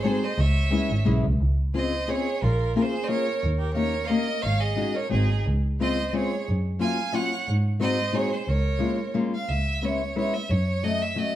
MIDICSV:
0, 0, Header, 1, 5, 480
1, 0, Start_track
1, 0, Key_signature, -5, "major"
1, 0, Tempo, 336889
1, 554, Time_signature, 3, 2, 24, 8
1, 16177, End_track
2, 0, Start_track
2, 0, Title_t, "Violin"
2, 0, Program_c, 0, 40
2, 28, Note_on_c, 0, 73, 70
2, 94, Note_on_c, 0, 72, 87
2, 115, Note_off_c, 0, 73, 0
2, 339, Note_on_c, 0, 75, 78
2, 360, Note_off_c, 0, 72, 0
2, 575, Note_on_c, 0, 76, 93
2, 596, Note_off_c, 0, 75, 0
2, 1536, Note_off_c, 0, 76, 0
2, 2501, Note_on_c, 0, 75, 81
2, 2987, Note_on_c, 0, 73, 87
2, 3008, Note_off_c, 0, 75, 0
2, 3452, Note_on_c, 0, 70, 79
2, 3474, Note_off_c, 0, 73, 0
2, 3914, Note_off_c, 0, 70, 0
2, 3922, Note_on_c, 0, 70, 89
2, 4027, Note_on_c, 0, 72, 87
2, 4048, Note_off_c, 0, 70, 0
2, 4325, Note_on_c, 0, 75, 62
2, 4346, Note_off_c, 0, 72, 0
2, 4386, Note_on_c, 0, 73, 100
2, 4407, Note_off_c, 0, 75, 0
2, 4877, Note_off_c, 0, 73, 0
2, 5103, Note_on_c, 0, 70, 65
2, 5312, Note_off_c, 0, 70, 0
2, 5320, Note_on_c, 0, 73, 91
2, 5760, Note_on_c, 0, 77, 68
2, 5781, Note_off_c, 0, 73, 0
2, 5808, Note_on_c, 0, 75, 89
2, 5829, Note_off_c, 0, 77, 0
2, 6304, Note_on_c, 0, 77, 92
2, 6325, Note_off_c, 0, 75, 0
2, 6560, Note_on_c, 0, 75, 80
2, 6581, Note_off_c, 0, 77, 0
2, 7072, Note_on_c, 0, 73, 89
2, 7094, Note_off_c, 0, 75, 0
2, 7276, Note_off_c, 0, 73, 0
2, 7284, Note_on_c, 0, 68, 82
2, 7744, Note_off_c, 0, 68, 0
2, 8286, Note_on_c, 0, 75, 102
2, 8667, Note_off_c, 0, 75, 0
2, 8667, Note_on_c, 0, 75, 58
2, 8755, Note_on_c, 0, 73, 88
2, 8776, Note_off_c, 0, 75, 0
2, 9230, Note_off_c, 0, 73, 0
2, 9703, Note_on_c, 0, 80, 103
2, 10186, Note_on_c, 0, 78, 108
2, 10207, Note_off_c, 0, 80, 0
2, 10653, Note_off_c, 0, 78, 0
2, 11138, Note_on_c, 0, 75, 99
2, 11615, Note_on_c, 0, 73, 91
2, 11636, Note_off_c, 0, 75, 0
2, 11866, Note_on_c, 0, 72, 79
2, 11887, Note_off_c, 0, 73, 0
2, 12106, Note_on_c, 0, 73, 83
2, 12128, Note_off_c, 0, 72, 0
2, 13053, Note_off_c, 0, 73, 0
2, 13318, Note_on_c, 0, 77, 73
2, 13526, Note_on_c, 0, 76, 83
2, 13547, Note_off_c, 0, 77, 0
2, 14029, Note_on_c, 0, 73, 79
2, 14051, Note_off_c, 0, 76, 0
2, 14500, Note_off_c, 0, 73, 0
2, 14509, Note_on_c, 0, 73, 87
2, 14729, Note_on_c, 0, 76, 75
2, 14750, Note_off_c, 0, 73, 0
2, 14971, Note_on_c, 0, 73, 84
2, 14992, Note_off_c, 0, 76, 0
2, 15442, Note_on_c, 0, 75, 96
2, 15463, Note_off_c, 0, 73, 0
2, 15702, Note_on_c, 0, 76, 85
2, 15723, Note_off_c, 0, 75, 0
2, 15939, Note_on_c, 0, 75, 89
2, 15960, Note_off_c, 0, 76, 0
2, 16177, Note_off_c, 0, 75, 0
2, 16177, End_track
3, 0, Start_track
3, 0, Title_t, "Violin"
3, 0, Program_c, 1, 40
3, 37, Note_on_c, 1, 69, 55
3, 77, Note_on_c, 1, 68, 82
3, 98, Note_off_c, 1, 69, 0
3, 354, Note_on_c, 1, 72, 74
3, 375, Note_off_c, 1, 68, 0
3, 562, Note_on_c, 1, 73, 74
3, 583, Note_off_c, 1, 72, 0
3, 1529, Note_off_c, 1, 73, 0
3, 2500, Note_on_c, 1, 72, 69
3, 3008, Note_on_c, 1, 68, 82
3, 3029, Note_off_c, 1, 72, 0
3, 3466, Note_on_c, 1, 65, 70
3, 3488, Note_off_c, 1, 68, 0
3, 3946, Note_off_c, 1, 65, 0
3, 3953, Note_on_c, 1, 65, 61
3, 4064, Note_on_c, 1, 68, 80
3, 4086, Note_off_c, 1, 65, 0
3, 4329, Note_on_c, 1, 72, 49
3, 4350, Note_off_c, 1, 68, 0
3, 4387, Note_on_c, 1, 70, 91
3, 4408, Note_off_c, 1, 72, 0
3, 4878, Note_off_c, 1, 70, 0
3, 5110, Note_on_c, 1, 67, 66
3, 5333, Note_off_c, 1, 67, 0
3, 5341, Note_on_c, 1, 70, 70
3, 5773, Note_on_c, 1, 73, 56
3, 5795, Note_off_c, 1, 70, 0
3, 5833, Note_on_c, 1, 70, 82
3, 5854, Note_off_c, 1, 73, 0
3, 6299, Note_on_c, 1, 73, 81
3, 6321, Note_off_c, 1, 70, 0
3, 6556, Note_on_c, 1, 68, 76
3, 6577, Note_off_c, 1, 73, 0
3, 7043, Note_on_c, 1, 70, 64
3, 7065, Note_off_c, 1, 68, 0
3, 7272, Note_off_c, 1, 70, 0
3, 7280, Note_on_c, 1, 63, 62
3, 7742, Note_off_c, 1, 63, 0
3, 8270, Note_on_c, 1, 72, 72
3, 8667, Note_off_c, 1, 72, 0
3, 8667, Note_on_c, 1, 72, 52
3, 8761, Note_on_c, 1, 68, 77
3, 8783, Note_off_c, 1, 72, 0
3, 9234, Note_off_c, 1, 68, 0
3, 9705, Note_on_c, 1, 77, 74
3, 10181, Note_on_c, 1, 73, 76
3, 10202, Note_off_c, 1, 77, 0
3, 10651, Note_off_c, 1, 73, 0
3, 11138, Note_on_c, 1, 72, 84
3, 11609, Note_on_c, 1, 68, 80
3, 11630, Note_off_c, 1, 72, 0
3, 11862, Note_off_c, 1, 68, 0
3, 11862, Note_on_c, 1, 68, 65
3, 12083, Note_on_c, 1, 70, 67
3, 12105, Note_off_c, 1, 68, 0
3, 13042, Note_off_c, 1, 70, 0
3, 16177, End_track
4, 0, Start_track
4, 0, Title_t, "Steel-string acoustic guitar"
4, 0, Program_c, 2, 25
4, 57, Note_on_c, 2, 56, 76
4, 66, Note_on_c, 2, 60, 65
4, 68, Note_on_c, 2, 63, 70
4, 70, Note_on_c, 2, 66, 61
4, 74, Note_on_c, 2, 68, 77
4, 315, Note_off_c, 2, 56, 0
4, 320, Note_off_c, 2, 60, 0
4, 320, Note_off_c, 2, 63, 0
4, 321, Note_off_c, 2, 66, 0
4, 324, Note_off_c, 2, 68, 0
4, 1005, Note_on_c, 2, 56, 78
4, 1011, Note_on_c, 2, 61, 64
4, 1018, Note_on_c, 2, 68, 74
4, 1019, Note_on_c, 2, 59, 56
4, 1024, Note_on_c, 2, 64, 65
4, 1276, Note_off_c, 2, 56, 0
4, 1277, Note_off_c, 2, 59, 0
4, 1277, Note_off_c, 2, 61, 0
4, 1277, Note_off_c, 2, 64, 0
4, 1279, Note_off_c, 2, 68, 0
4, 1494, Note_on_c, 2, 56, 69
4, 1501, Note_on_c, 2, 59, 65
4, 1502, Note_on_c, 2, 61, 63
4, 1512, Note_on_c, 2, 64, 67
4, 1515, Note_on_c, 2, 68, 90
4, 1768, Note_off_c, 2, 56, 0
4, 1770, Note_off_c, 2, 59, 0
4, 1773, Note_off_c, 2, 61, 0
4, 1773, Note_off_c, 2, 64, 0
4, 1778, Note_off_c, 2, 68, 0
4, 2478, Note_on_c, 2, 61, 57
4, 2486, Note_on_c, 2, 60, 63
4, 2486, Note_on_c, 2, 65, 58
4, 2496, Note_on_c, 2, 68, 69
4, 2745, Note_off_c, 2, 61, 0
4, 2746, Note_off_c, 2, 65, 0
4, 2749, Note_off_c, 2, 60, 0
4, 2751, Note_off_c, 2, 68, 0
4, 2960, Note_on_c, 2, 61, 61
4, 2965, Note_on_c, 2, 65, 56
4, 2967, Note_on_c, 2, 60, 58
4, 2970, Note_on_c, 2, 68, 67
4, 3225, Note_off_c, 2, 61, 0
4, 3227, Note_off_c, 2, 65, 0
4, 3229, Note_off_c, 2, 60, 0
4, 3229, Note_off_c, 2, 68, 0
4, 3928, Note_on_c, 2, 58, 63
4, 3936, Note_on_c, 2, 61, 62
4, 3942, Note_on_c, 2, 65, 60
4, 3946, Note_on_c, 2, 68, 81
4, 4188, Note_off_c, 2, 58, 0
4, 4189, Note_off_c, 2, 68, 0
4, 4190, Note_off_c, 2, 61, 0
4, 4190, Note_off_c, 2, 65, 0
4, 4393, Note_on_c, 2, 58, 61
4, 4401, Note_on_c, 2, 65, 60
4, 4403, Note_on_c, 2, 61, 59
4, 4410, Note_on_c, 2, 68, 72
4, 4654, Note_off_c, 2, 58, 0
4, 4656, Note_off_c, 2, 61, 0
4, 4658, Note_off_c, 2, 65, 0
4, 4661, Note_off_c, 2, 68, 0
4, 5337, Note_on_c, 2, 58, 61
4, 5347, Note_on_c, 2, 61, 62
4, 5354, Note_on_c, 2, 63, 65
4, 5361, Note_on_c, 2, 67, 67
4, 5606, Note_off_c, 2, 58, 0
4, 5607, Note_off_c, 2, 61, 0
4, 5607, Note_off_c, 2, 63, 0
4, 5607, Note_off_c, 2, 67, 0
4, 5833, Note_on_c, 2, 58, 63
4, 5838, Note_on_c, 2, 61, 47
4, 5839, Note_on_c, 2, 63, 55
4, 5845, Note_on_c, 2, 67, 59
4, 6092, Note_off_c, 2, 61, 0
4, 6093, Note_off_c, 2, 58, 0
4, 6095, Note_off_c, 2, 63, 0
4, 6096, Note_off_c, 2, 67, 0
4, 6778, Note_on_c, 2, 56, 57
4, 6787, Note_on_c, 2, 63, 52
4, 6790, Note_on_c, 2, 61, 52
4, 6803, Note_on_c, 2, 66, 76
4, 7051, Note_off_c, 2, 56, 0
4, 7053, Note_off_c, 2, 63, 0
4, 7057, Note_off_c, 2, 61, 0
4, 7059, Note_off_c, 2, 66, 0
4, 7256, Note_on_c, 2, 56, 56
4, 7267, Note_on_c, 2, 60, 49
4, 7268, Note_on_c, 2, 63, 51
4, 7270, Note_on_c, 2, 66, 65
4, 7534, Note_off_c, 2, 56, 0
4, 7534, Note_off_c, 2, 63, 0
4, 7536, Note_off_c, 2, 60, 0
4, 7539, Note_off_c, 2, 66, 0
4, 8261, Note_on_c, 2, 56, 53
4, 8269, Note_on_c, 2, 60, 61
4, 8272, Note_on_c, 2, 65, 69
4, 8277, Note_on_c, 2, 61, 59
4, 8516, Note_off_c, 2, 56, 0
4, 8518, Note_off_c, 2, 60, 0
4, 8522, Note_off_c, 2, 65, 0
4, 8523, Note_off_c, 2, 61, 0
4, 8731, Note_on_c, 2, 56, 60
4, 8739, Note_on_c, 2, 60, 54
4, 8743, Note_on_c, 2, 65, 63
4, 8746, Note_on_c, 2, 61, 55
4, 8992, Note_off_c, 2, 56, 0
4, 8993, Note_off_c, 2, 60, 0
4, 8994, Note_off_c, 2, 61, 0
4, 8996, Note_off_c, 2, 65, 0
4, 9679, Note_on_c, 2, 54, 69
4, 9685, Note_on_c, 2, 58, 58
4, 9688, Note_on_c, 2, 61, 56
4, 9693, Note_on_c, 2, 65, 69
4, 9938, Note_off_c, 2, 61, 0
4, 9939, Note_off_c, 2, 54, 0
4, 9939, Note_off_c, 2, 58, 0
4, 9939, Note_off_c, 2, 65, 0
4, 10152, Note_on_c, 2, 54, 58
4, 10158, Note_on_c, 2, 61, 57
4, 10164, Note_on_c, 2, 58, 49
4, 10166, Note_on_c, 2, 65, 70
4, 10411, Note_off_c, 2, 54, 0
4, 10411, Note_off_c, 2, 61, 0
4, 10412, Note_off_c, 2, 65, 0
4, 10415, Note_off_c, 2, 58, 0
4, 11107, Note_on_c, 2, 56, 62
4, 11117, Note_on_c, 2, 60, 61
4, 11120, Note_on_c, 2, 66, 75
4, 11123, Note_on_c, 2, 63, 64
4, 11362, Note_off_c, 2, 56, 0
4, 11364, Note_off_c, 2, 60, 0
4, 11368, Note_off_c, 2, 66, 0
4, 11370, Note_off_c, 2, 63, 0
4, 11580, Note_on_c, 2, 56, 53
4, 11582, Note_on_c, 2, 60, 57
4, 11583, Note_on_c, 2, 63, 53
4, 11594, Note_on_c, 2, 66, 58
4, 11836, Note_off_c, 2, 60, 0
4, 11838, Note_off_c, 2, 56, 0
4, 11840, Note_off_c, 2, 63, 0
4, 11842, Note_off_c, 2, 66, 0
4, 12519, Note_on_c, 2, 56, 62
4, 12530, Note_on_c, 2, 58, 56
4, 12533, Note_on_c, 2, 61, 55
4, 12540, Note_on_c, 2, 65, 68
4, 12788, Note_off_c, 2, 56, 0
4, 12791, Note_off_c, 2, 58, 0
4, 12795, Note_off_c, 2, 61, 0
4, 12796, Note_off_c, 2, 65, 0
4, 13024, Note_on_c, 2, 56, 61
4, 13031, Note_on_c, 2, 58, 57
4, 13031, Note_on_c, 2, 61, 59
4, 13033, Note_on_c, 2, 65, 77
4, 13285, Note_off_c, 2, 61, 0
4, 13286, Note_off_c, 2, 56, 0
4, 13288, Note_off_c, 2, 58, 0
4, 13289, Note_off_c, 2, 65, 0
4, 13993, Note_on_c, 2, 56, 59
4, 13998, Note_on_c, 2, 61, 55
4, 14004, Note_on_c, 2, 59, 54
4, 14008, Note_on_c, 2, 64, 63
4, 14254, Note_off_c, 2, 56, 0
4, 14254, Note_off_c, 2, 61, 0
4, 14259, Note_off_c, 2, 59, 0
4, 14259, Note_off_c, 2, 64, 0
4, 14473, Note_on_c, 2, 56, 59
4, 14478, Note_on_c, 2, 64, 65
4, 14480, Note_on_c, 2, 61, 56
4, 14481, Note_on_c, 2, 59, 57
4, 14731, Note_off_c, 2, 56, 0
4, 14731, Note_off_c, 2, 64, 0
4, 14733, Note_off_c, 2, 61, 0
4, 14734, Note_off_c, 2, 59, 0
4, 15433, Note_on_c, 2, 54, 65
4, 15441, Note_on_c, 2, 57, 61
4, 15442, Note_on_c, 2, 61, 58
4, 15446, Note_on_c, 2, 66, 73
4, 15689, Note_off_c, 2, 66, 0
4, 15690, Note_off_c, 2, 54, 0
4, 15690, Note_off_c, 2, 61, 0
4, 15692, Note_off_c, 2, 57, 0
4, 15890, Note_on_c, 2, 54, 57
4, 15900, Note_on_c, 2, 61, 56
4, 15902, Note_on_c, 2, 57, 59
4, 15910, Note_on_c, 2, 66, 71
4, 16154, Note_off_c, 2, 54, 0
4, 16157, Note_off_c, 2, 57, 0
4, 16160, Note_off_c, 2, 61, 0
4, 16162, Note_off_c, 2, 66, 0
4, 16177, End_track
5, 0, Start_track
5, 0, Title_t, "Double bass"
5, 0, Program_c, 3, 43
5, 535, Note_on_c, 3, 37, 107
5, 1019, Note_off_c, 3, 37, 0
5, 1270, Note_on_c, 3, 32, 81
5, 1491, Note_off_c, 3, 32, 0
5, 1501, Note_on_c, 3, 35, 87
5, 1744, Note_off_c, 3, 35, 0
5, 1772, Note_on_c, 3, 37, 90
5, 1988, Note_off_c, 3, 37, 0
5, 2002, Note_on_c, 3, 37, 91
5, 2950, Note_off_c, 3, 37, 0
5, 3456, Note_on_c, 3, 34, 98
5, 3622, Note_off_c, 3, 34, 0
5, 4886, Note_on_c, 3, 39, 81
5, 5821, Note_off_c, 3, 39, 0
5, 6317, Note_on_c, 3, 32, 83
5, 6484, Note_off_c, 3, 32, 0
5, 7297, Note_on_c, 3, 32, 95
5, 7614, Note_off_c, 3, 32, 0
5, 7782, Note_on_c, 3, 37, 81
5, 8721, Note_off_c, 3, 37, 0
5, 9239, Note_on_c, 3, 42, 85
5, 9396, Note_off_c, 3, 42, 0
5, 10649, Note_on_c, 3, 44, 93
5, 11576, Note_off_c, 3, 44, 0
5, 12074, Note_on_c, 3, 37, 93
5, 12236, Note_off_c, 3, 37, 0
5, 13514, Note_on_c, 3, 37, 75
5, 14455, Note_off_c, 3, 37, 0
5, 14959, Note_on_c, 3, 42, 100
5, 15891, Note_off_c, 3, 42, 0
5, 16177, End_track
0, 0, End_of_file